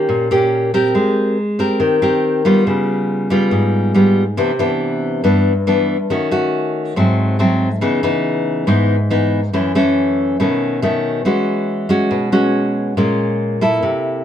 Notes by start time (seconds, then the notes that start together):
Already playing: A#3 C#4 G4
0.09 A#2
0.31 A#3 C#4 G4
0.74 C4 G4 A#4
0.95 G#3
1.59 C4 G4 A#4
1.80 D#3
2.02 C4 G4 A#4
2.45 G3 B3 F4
2.67 C#3
3.30 G3 B3 F4
3.51 G#2
3.94 G3 B3 F4
4.37 C3 E3 B3 D4
4.59 E3 B3 D4
5.24 G2 E3 B3 D4
5.67 E3 B3 D4
6.10 D#3 A3 C#4 F#4
6.31 A3 C#4 F#4
6.96 G#2 F#3 A3 C4
7.39 F#3 A3 C4
7.81 C#3 E3 B3 D#4
8.03 E3 B3 D#4
8.67 G#2 E3 B3 D#4
9.10 E3 B3 D#4
9.53 F#2 E3 A3 C#4
9.75 E3 A3 C#4
10.40 B2 D#3 A3 C#4
10.82 D#3 A3 C#4
11.25 E3 G#3 C#4 F#4
11.89 G#3 C#4 F#4
12.11 B2
12.32 G#3 C#4 F#4
12.97 A#2 G#3 C#4 F4
13.61 A#3 E4 A4
13.83 C3